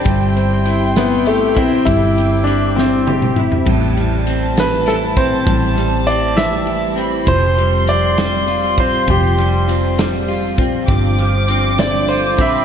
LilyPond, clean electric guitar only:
\new Staff \with { instrumentName = "Clean electric guitar" } { \time 6/8 \key a \minor \tempo 4. = 67 g8 c'8 e'4 g'8 e'8 | g8 c'8 e'8 c'8 g'8 e'8 | a,8 g8 c'8 e8 e'8 c'8 | a,8 g8 c'8 e8 e'8 c'8 |
f8 g8 c'8 g8 f'8 c'8 | f8 g8 c'8 g8 f'8 c'8 | g,8 f8 c'8 d8 f'8 c'8 | }